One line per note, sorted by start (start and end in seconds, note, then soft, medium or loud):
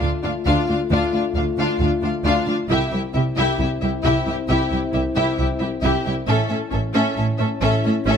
0.00 0.09 D2 soft
0.00 0.10 D2 soft
0.00 2.67 A3 soft
0.00 0.08 D4 soft
0.00 2.67 F4 soft
0.00 0.11 F4 soft
0.00 0.10 F5 soft
0.23 0.32 D2 soft
0.23 0.31 D4 soft
0.23 0.31 F4 soft
0.23 0.31 F5 soft
0.46 0.54 D2 medium
0.46 0.55 D2 soft
0.46 0.67 D4 soft
0.46 0.67 F4 soft
0.46 0.68 F5 soft
0.69 0.77 D2 soft
0.69 0.77 D4 soft
0.69 0.77 F4 soft
0.69 0.78 F5 soft
0.91 0.99 D2 medium
0.91 0.99 D2 soft
0.91 1.12 D4 soft
0.91 1.12 F4 soft
0.91 1.13 F5 soft
1.13 1.21 D2 soft
1.13 1.22 D4 soft
1.13 1.21 F4 soft
1.13 1.22 F5 soft
1.36 1.44 D2 soft
1.36 1.44 D4 soft
1.36 1.44 F4 soft
1.36 1.44 F5 soft
1.58 1.66 D2 medium
1.58 1.79 D4 soft
1.58 1.80 F4 soft
1.58 1.79 F5 soft
1.80 1.88 D2 soft
1.80 1.89 D2 soft
1.80 1.89 D4 soft
1.80 1.90 F4 soft
1.80 1.89 F5 soft
2.03 2.11 D2 soft
2.03 2.11 D4 soft
2.03 2.11 F4 soft
2.03 2.12 F5 soft
2.25 2.33 D2 soft
2.25 2.33 D2 medium
2.25 2.46 D4 soft
2.25 2.46 F4 soft
2.25 2.47 F5 medium
2.47 2.55 D2 soft
2.47 2.55 D4 soft
2.47 2.55 F4 soft
2.47 2.57 F5 soft
2.69 2.78 C2 soft
2.69 6.24 C4 soft
2.69 2.91 E4 soft
2.69 6.24 E4 soft
2.69 2.92 G4 soft
2.69 2.92 E5 medium
2.92 3.00 C2 soft
2.92 3.00 E4 soft
2.92 3.01 G4 soft
2.92 3.01 E5 soft
3.14 3.23 C2 soft
3.14 3.22 E4 soft
3.14 3.24 G4 soft
3.14 3.23 E5 soft
3.37 3.45 C2 medium
3.37 3.58 E4 soft
3.37 3.59 G4 medium
3.37 3.58 E5 medium
3.59 3.67 C2 soft
3.59 3.68 C2 soft
3.59 3.67 E4 soft
3.59 3.70 G4 soft
3.59 3.68 E5 soft
3.82 3.90 C2 soft
3.82 3.90 E4 soft
3.82 3.92 G4 soft
3.82 3.90 E5 soft
4.03 4.13 C2 medium
4.03 4.25 E4 soft
4.03 4.26 G4 soft
4.03 4.25 E5 medium
4.26 4.35 C2 soft
4.26 4.34 E4 soft
4.26 4.36 G4 soft
4.26 4.36 E5 soft
4.49 4.57 C2 medium
4.49 4.58 C2 medium
4.49 4.70 E4 medium
4.49 4.71 G4 medium
4.49 4.70 E5 soft
4.71 4.79 C2 soft
4.71 4.80 E4 soft
4.71 4.80 G4 soft
4.71 4.79 E5 soft
4.94 5.02 C2 soft
4.94 5.02 E4 soft
4.94 5.02 G4 soft
4.94 5.02 E5 soft
5.15 5.24 C2 medium
5.15 5.37 E4 medium
5.15 5.37 G4 soft
5.15 5.37 E5 medium
5.38 5.47 C2 soft
5.38 5.46 E4 soft
5.38 5.48 G4 soft
5.38 5.47 E5 soft
5.59 5.69 C2 soft
5.59 5.68 E4 soft
5.59 5.70 G4 soft
5.59 5.67 E5 soft
5.82 5.91 C2 medium
5.82 5.92 C2 medium
5.82 6.04 E4 soft
5.82 6.05 G4 medium
5.82 6.03 E5 soft
6.05 6.14 C2 soft
6.05 6.13 E4 soft
6.05 6.15 G4 soft
6.05 6.13 E5 soft
6.28 6.36 A1 medium
6.28 6.36 A2 soft
6.28 6.49 C#4 medium
6.28 8.17 C#4 medium
6.28 8.17 E4 medium
6.28 6.49 A4 medium
6.28 6.47 E5 medium
6.48 6.58 A2 soft
6.48 6.58 C#4 soft
6.48 6.59 A4 soft
6.48 6.56 E5 soft
6.71 6.80 A1 soft
6.71 6.80 A2 soft
6.71 6.79 C#4 soft
6.71 6.81 A4 soft
6.71 6.80 E5 soft
6.94 7.03 A2 medium
6.94 7.15 C#4 medium
6.94 7.16 A4 soft
6.94 7.15 E5 medium
7.16 7.25 A1 soft
7.16 7.25 A2 soft
7.16 7.24 C#4 soft
7.16 7.25 A4 soft
7.16 7.25 E5 soft
7.38 7.48 A2 soft
7.38 7.46 C#4 soft
7.38 7.49 A4 soft
7.38 7.47 E5 soft
7.61 7.70 A1 medium
7.61 7.70 A2 medium
7.61 7.83 C#4 medium
7.61 7.83 A4 medium
7.61 7.82 E5 medium
7.84 7.93 A2 soft
7.84 7.92 C#4 soft
7.84 7.94 A4 soft
7.84 7.94 E5 soft
8.06 8.15 A1 medium
8.06 8.15 A2 medium
8.06 8.17 C#4 medium
8.06 8.17 A4 medium
8.06 8.17 E5 medium